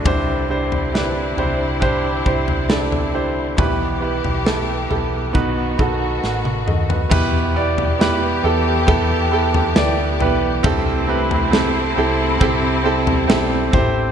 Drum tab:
CC |----------------|----------------|x---------------|----------------|
SD |----o-------o---|----o-------o---|----o-------o---|----o-------o---|
T1 |----------------|-------------o--|----------------|----------------|
T2 |----------------|--------------o-|----------------|----------------|
FT |o--o--o----o-o--|o--o--o--------o|o--o----o--o--o-|o--o-------o--o-|
BD |o-------o-o-----|o-------o-o-----|o-------o-------|o-------o-----o-|